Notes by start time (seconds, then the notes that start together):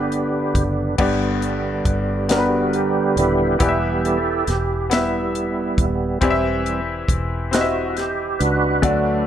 Already playing: G1 G2 D3 B3 D4 G4 B4 D5
0.12 closed hi-hat
0.55 F#1, kick, closed hi-hat
0.98 G1 G2 D3 G3 B3 D4 G4 D5, kick, crash
1.42 closed hi-hat
1.85 G1, kick, closed hi-hat
2.29 B3 D4 F#4 G4 A#4, snare, closed hi-hat
2.38 B4
2.73 G4, closed hi-hat
3.17 D#1 D3 G3 B3 E4 G4 B4, closed hi-hat
3.59 E1 E3 G3 B3 E4 G4 D5, kick, closed hi-hat
3.68 E5
4.05 A4, closed hi-hat
4.47 E1 G4, snare, closed hi-hat
4.90 G3 B3 E4 G4 E5, snare, closed hi-hat
5.35 closed hi-hat
5.78 D#1, kick, closed hi-hat
6.21 E1 E3 G3 C4 E4 G4 D5, kick, closed hi-hat
6.30 E5
6.66 closed hi-hat
7.08 E1, kick, closed hi-hat
7.51 C4 E4 F#4 G4 D#5, snare, closed hi-hat
7.61 E5
7.90 F#4
7.97 G4, snare, closed hi-hat
8.39 C#2 D4 F#4 B4, closed hi-hat
8.82 D2 D3 F#3 A3 D4 F#4 D5, kick, closed hi-hat